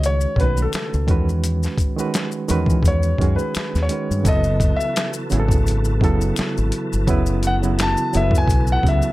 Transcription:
0.00 0.25 C#2 medium
0.00 0.42 D#3 medium
0.00 1.08 G#3 medium
0.00 0.37 C#4 medium
0.00 0.38 F#4 medium
0.00 0.39 B4 loud
0.00 0.30 C#5 medium
0.00 closed hi-hat medium
0.04 0.40 C#5 medium
0.04 maracas medium
0.21 maracas soft
0.35 0.66 B1 medium
0.35 0.44 C#3 medium
0.35 1.07 A3 medium
0.35 1.08 C#4 medium
0.35 1.08 F#4 medium
0.35 1.09 B4 medium
0.35 kick medium
0.40 1.06 D#3 medium
0.40 0.57 B4 medium
0.40 closed hi-hat medium
0.57 maracas soft
0.62 1.26 A4 medium
0.73 finger snap medium
0.73 muted fingered electric bass stroke soft
0.73 snare loud
0.73 closed hi-hat medium
0.73 maracas medium
0.94 1.06 C#2 medium
0.94 maracas soft
1.07 1.66 E2 medium
1.07 1.84 D#3 medium
1.07 1.85 G#3 medium
1.07 1.85 C#4 medium
1.07 1.86 F#4 medium
1.07 1.86 B4 medium
1.07 kick loud
1.07 closed hi-hat medium
1.29 maracas soft
1.44 closed hi-hat medium
1.44 maracas medium
1.63 snare soft
1.63 maracas soft
1.78 kick medium
1.78 closed hi-hat medium
1.78 maracas soft
1.97 2.42 D#3 medium
1.97 2.42 G#3 medium
1.97 2.43 C#4 medium
1.97 2.43 F#4 medium
1.97 2.44 B4 medium
1.97 maracas soft
2.14 finger snap medium
2.14 snare loud
2.14 closed hi-hat medium
2.14 maracas medium
2.32 maracas soft
2.48 2.66 E2 medium
2.48 3.11 D#3 medium
2.48 3.11 G#3 medium
2.48 3.11 C#4 medium
2.48 3.12 F#4 medium
2.48 3.12 B4 medium
2.48 closed hi-hat medium
2.48 maracas soft
2.66 2.80 E3 medium
2.66 kick medium
2.66 maracas soft
2.83 3.13 E2 medium
2.83 kick medium
2.83 closed hi-hat medium
2.83 maracas medium
2.88 3.34 C#5 medium
3.03 maracas soft
3.18 3.35 F#2 medium
3.18 3.81 D#3 medium
3.18 3.82 G#3 medium
3.18 3.82 C#4 medium
3.18 3.83 F#4 medium
3.18 kick medium
3.18 closed hi-hat medium
3.23 3.83 G#4 medium
3.36 3.77 B4 medium
3.36 maracas soft
3.55 finger snap medium
3.55 muted fingered electric bass stroke soft
3.55 snare loud
3.55 closed hi-hat medium
3.55 maracas medium
3.75 3.88 D#2 medium
3.75 snare soft
3.75 maracas soft
3.83 4.29 C#5 medium
3.89 4.20 D#3 medium
3.89 4.21 G#3 medium
3.89 4.21 C#4 medium
3.89 4.22 F#4 medium
3.89 4.22 B4 medium
3.89 closed hi-hat medium
4.11 4.27 G2 medium
4.11 maracas soft
4.23 4.71 F#1 medium
4.23 5.17 C#3 medium
4.23 9.12 E3 medium
4.23 5.18 F#3 medium
4.23 9.12 F#3 medium
4.23 5.19 B3 medium
4.23 9.12 B3 medium
4.23 5.19 E4 medium
4.23 9.12 A4 medium
4.23 kick loud
4.23 closed hi-hat medium
4.23 maracas medium
4.27 5.19 A4 loud
4.27 4.75 D#5 loud
4.44 maracas soft
4.60 kick medium
4.60 closed hi-hat medium
4.60 maracas soft
4.77 5.07 E5 medium
4.77 maracas soft
4.96 finger snap medium
4.96 snare loud
4.96 closed hi-hat medium
4.96 maracas medium
5.13 maracas medium
5.30 6.02 G#1 medium
5.30 5.93 C#3 medium
5.30 5.93 F#3 medium
5.30 5.93 B3 medium
5.30 5.94 E4 medium
5.30 5.40 G#4 medium
5.30 closed hi-hat medium
5.30 maracas soft
5.40 5.97 A4 medium
5.49 kick medium
5.49 maracas soft
5.66 closed hi-hat medium
5.66 maracas medium
5.85 maracas soft
6.01 6.31 F#1 medium
6.01 6.95 C#3 medium
6.01 6.95 F#3 medium
6.01 6.96 B3 medium
6.01 6.96 E4 medium
6.01 6.96 A4 medium
6.01 kick medium
6.01 closed hi-hat medium
6.21 maracas soft
6.36 finger snap medium
6.36 muted fingered electric bass stroke soft
6.36 snare loud
6.36 closed hi-hat medium
6.36 maracas medium
6.58 6.71 G#1 medium
6.58 maracas soft
6.72 closed hi-hat medium
6.93 7.08 G1 medium
6.93 maracas soft
7.07 7.94 F#1 loud
7.07 7.54 C#3 loud
7.07 7.55 F#3 loud
7.07 7.55 B3 loud
7.07 7.56 E4 loud
7.07 7.56 B4 loud
7.07 kick loud
7.07 closed hi-hat medium
7.07 maracas medium
7.26 maracas soft
7.43 closed hi-hat medium
7.43 maracas soft
7.47 7.54 F#5 medium
7.62 8.07 C#3 medium
7.62 8.07 F#3 medium
7.62 8.08 B3 medium
7.62 8.08 E4 medium
7.62 8.08 F#4 medium
7.62 maracas soft
7.79 8.13 A5 loud
7.79 finger snap medium
7.79 snare loud
7.79 closed hi-hat medium
7.79 maracas medium
7.97 maracas soft
8.13 8.31 F#1 medium
8.13 8.75 C#3 medium
8.13 8.76 F#3 medium
8.13 8.76 B3 medium
8.13 8.77 E4 medium
8.13 8.22 A4 medium
8.13 8.35 E5 medium
8.13 closed hi-hat medium
8.13 maracas soft
8.23 8.80 B4 medium
8.31 8.45 F#2 medium
8.31 kick medium
8.35 8.72 G#5 medium
8.35 maracas soft
8.48 8.77 B1 medium
8.48 kick medium
8.48 closed hi-hat medium
8.48 maracas medium
8.67 maracas soft
8.72 8.86 F#5 medium
8.83 9.00 C#2 medium
8.83 9.12 C#3 medium
8.83 9.12 F#3 medium
8.83 9.12 B3 medium
8.83 9.12 E4 medium
8.83 9.12 F#4 medium
8.83 kick medium
8.83 closed hi-hat medium
8.89 9.12 E5 medium
9.02 maracas soft

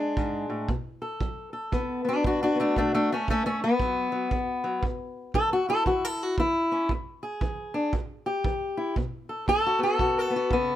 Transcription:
0.00 0.13 B2 medium
0.00 0.70 G#3 medium
0.00 0.67 D4 medium
0.00 0.67 G#4 medium
0.17 0.49 G#2 medium
0.17 kick medium
0.50 0.70 A2 medium
0.69 1.17 B2 medium
0.69 kick medium
1.02 1.53 A4 soft
1.21 1.69 F#3 medium
1.21 kick medium
1.53 2.10 A4 soft
1.72 2.20 F#2 medium
1.72 2.03 B3 soft
1.72 kick medium
2.05 2.54 B3 soft
2.05 2.25 D4 medium
2.10 2.26 F#4 medium
2.24 2.59 F#3 medium
2.24 2.41 D4 medium
2.24 2.42 F#4 medium
2.24 kick medium
2.43 2.59 D4 medium
2.43 3.12 F#4 medium
2.56 2.74 B3 soft
2.60 2.77 A3 medium
2.60 2.77 D4 medium
2.76 3.25 B2 medium
2.76 2.93 A3 medium
2.76 2.94 D4 medium
2.76 kick medium
2.94 3.11 A3 medium
2.94 3.12 D4 medium
3.12 3.29 A3 medium
3.12 3.30 C#4 medium
3.28 3.45 A3 medium
3.28 3.45 C#4 medium
3.28 kick medium
3.46 3.63 A3 medium
3.46 3.63 C#4 medium
3.64 4.84 B3 medium
3.80 4.28 F#2 medium
3.80 4.11 F#3 soft
3.80 kick medium
4.12 4.31 F#3 soft
4.31 4.63 F#3 medium
4.31 kick medium
4.64 4.82 F#3 soft
4.83 5.31 A2 medium
4.83 kick medium
5.34 5.83 E3 medium
5.34 5.52 A4 loud
5.34 kick medium
5.53 5.69 F#4 medium
5.69 6.38 E4 soft
5.69 5.86 A4 loud
5.86 6.35 E3 medium
5.86 6.05 F#4 medium
5.86 kick medium
6.05 6.23 A4 medium
6.23 6.39 F#4 medium
6.38 6.86 E3 medium
6.38 6.91 E4 medium
6.38 kick medium
6.72 6.89 C#4 soft
6.89 7.38 E2 medium
6.89 kick medium
7.23 7.92 G#4 medium
7.41 7.89 E3 medium
7.41 kick medium
7.74 7.92 D4 medium
7.93 8.41 A2 medium
7.93 kick medium
8.26 8.95 G4 medium
8.44 8.93 E3 medium
8.44 kick medium
8.77 8.95 E4 medium
8.96 9.44 B2 medium
8.96 kick medium
9.29 9.47 A4 soft
9.48 9.78 B3 medium
9.48 9.82 A4 loud
9.48 kick medium
9.66 9.99 F#4 medium
9.79 10.29 B3 soft
9.83 10.17 A4 medium
9.99 10.47 B2 medium
9.99 10.34 F#4 medium
9.99 kick medium
10.18 10.76 A4 loud
10.30 10.52 B3 soft
10.36 10.52 F#4 medium
10.51 10.76 C#3 medium
10.51 10.76 B3 medium
10.51 kick medium

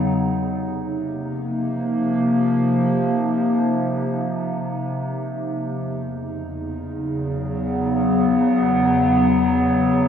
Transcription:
0.00 0.16 E2 medium
0.00 0.16 C#3 medium
0.00 0.16 F#3 medium
0.00 0.16 B3 medium
0.00 10.08 D#4 medium
0.19 5.71 C3 medium
0.81 5.71 A#3 medium
1.11 5.71 F3 medium
5.71 10.08 E2 medium
6.10 10.08 C#3 medium
6.76 10.08 F#3 medium
6.76 10.08 B3 medium

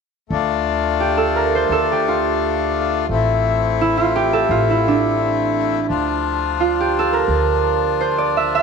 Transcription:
0.29 1.68 D2 medium
0.29 3.05 A3 medium
0.29 3.06 D4 medium
0.34 3.07 F4 medium
1.00 1.92 G4 medium
1.17 1.42 A4 medium
1.36 1.78 A#4 medium
1.55 3.53 C5 medium
1.69 3.07 D2 soft
1.69 3.92 A4 medium
1.92 4.15 G4 medium
2.09 3.87 F4 medium
3.09 4.46 A1 medium
3.09 5.84 A3 medium
3.09 5.85 C4 medium
3.13 5.87 E4 medium
3.81 4.03 E4 medium
3.97 4.50 F4 medium
4.16 6.51 G4 medium
4.33 6.53 A4 medium
4.49 5.86 A1 medium
4.49 4.76 F4 medium
4.70 6.66 E4 medium
4.88 7.68 D4 medium
5.87 7.26 D2 soft
5.87 8.62 F3 medium
5.87 8.62 D4 medium
5.87 8.62 F4 medium
6.60 8.43 F4 medium
6.80 8.62 G4 medium
6.99 7.19 A4 medium
7.13 8.62 A#4 medium
7.28 8.62 D2 medium
8.01 8.62 C5 medium
8.18 8.62 D5 medium
8.37 8.61 E5 medium
8.55 8.62 F5 medium

